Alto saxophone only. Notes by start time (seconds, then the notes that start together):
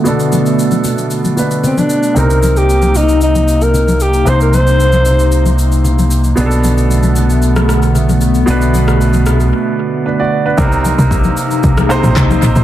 1.65 C4
1.79 D4
2.18 A#4
2.58 G4
2.97 D#4
3.23 D#4
3.63 A#4
4.02 G4
4.28 C5
4.42 A#4
4.55 C5